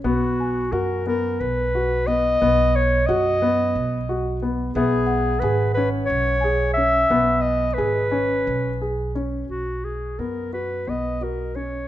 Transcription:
X:1
M:7/8
L:1/8
Q:1/4=89
K:B
V:1 name="Celesta"
z g4- g z | z6 z | e f4 g2- | g3 g4- |
g z6 |]
V:2 name="Clarinet"
F2 A A B2 d- | d c d4 z | G2 B B c2 e- | e d B4 z |
F G A B d A c |]
V:3 name="Grand piano"
B,2 F B,2 F B, | B,2 F B,2 F B, | B,2 G C2 G C | B,2 G C2 G C |
z2 B, F B, F C |]
V:4 name="Upright bass" clef=bass
B,,,2 F,,2 B,,,3 | B,,,2 F,,2 B,,,3 | B,,,2 G,,,2 B,,,3 | B,,,2 G,,,2 B,,,3 |
B,,,2 F,,2 B,,,3 |]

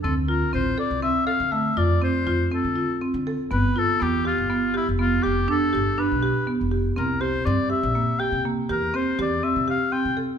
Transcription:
X:1
M:7/4
L:1/16
Q:1/4=121
K:Dm
V:1 name="Oboe"
A2 B2 c2 d2 e2 f2 e2 d2 c4 A4 z4 | =B2 A2 G2 F4 E2 F2 G2 A4 B4 z4 | B2 c2 d2 e4 g2 z2 B2 c2 d2 e2 f2 g2 z2 |]
V:2 name="Marimba"
C2 F2 C2 A2 C2 A2 A,2 F2 C2 F2 C2 F2 C2 A2 | =B,2 F2 B,2 G2 B,2 G2 B,2 G2 D2 G2 D2 G2 B,2 G2 | C2 G2 C2 G2 B,2 G2 B,2 G2 C2 G2 C2 G2 C2 A2 |]
V:3 name="Upright bass" clef=bass
D,,4 A,,,2 z C,,2 z2 D,3 F,,2 z2 F,,2 z D,2 z2 D,2 z | G,,,2 z2 E,,3 G,,,4 F,,,3 F,,,2 z2 G,,,2 z =B,,,2 z2 F,,,3 | C,,4 G,,2 z B,,,2 z2 C,3 E,,2 z2 E,,2 z C,2 z2 C,2 z |]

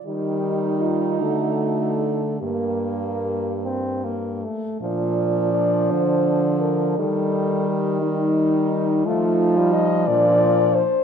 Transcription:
X:1
M:6/8
L:1/16
Q:3/8=55
K:Bb
V:1 name="French horn"
G4 F2 ^F4 A2 | G6 z6 | F4 d2 c4 B2 | A4 G2 E6 |
F4 e2 d4 c2 |]
V:2 name="French horn"
E12 | B,8- B, z3 | D12 | E6 E6 |
E6 D4 z2 |]
V:3 name="French horn" clef=bass
G,6 A,6 | B,6 C2 B,2 A,2 | F,12 | G,6 G,6 |
A,3 G,3 F,4 z2 |]
V:4 name="French horn" clef=bass
E,6 D,6 | G,,8- G,,2 z2 | B,,6 D,6 | E,12 |
F,6 B,,4 z2 |]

